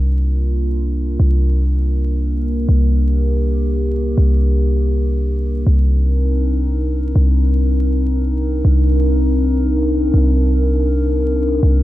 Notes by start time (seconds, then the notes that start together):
Already playing: C2 A#3 D4 F4 A#4
1.20 C2
2.68 C2 G4
4.18 C2
5.67 C2 C4 D4 D#4 A#4
7.16 C2
8.65 C2
10.14 C2
11.63 C2 A#3 F4